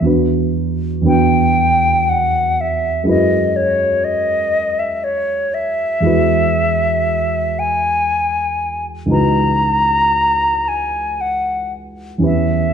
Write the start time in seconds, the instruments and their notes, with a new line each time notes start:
0.01 grand piano E2 B3 D4
0.05 grand piano F#4 B4
1.01 grand piano E2 B3 D4 F#4
1.06 grand piano B4, flute G5
2.09 flute F#5
2.61 flute E5
3.04 grand piano F#2 G#3 E4
3.08 grand piano F#4 B4, flute D#5
3.56 flute C#5
4.04 flute D#5
4.79 flute E5
5.04 flute C#5
5.54 flute E5
6.00 grand piano E2 G#3 E4
6.05 grand piano F#4 B4
7.59 flute G#5
9.06 grand piano C#2 E3 D#4 F#4
9.11 grand piano B4, flute A#5
10.68 flute G#5
11.21 flute F#5
12.18 grand piano E2 E3 C#4 G4
12.23 grand piano B4, flute E5